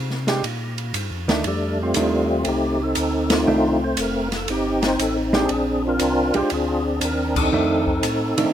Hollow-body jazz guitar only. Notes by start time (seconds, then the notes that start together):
0.28 G#3 D4 G4
1.28 D#3 A3 D4
1.96 D#3 A3 D4
3.47 D#3 A3 D4
5.33 G#3 D4 G4
6.35 G#3 D4 G4
7.53 D#3 A3 D4
8.38 D#3 A3 D4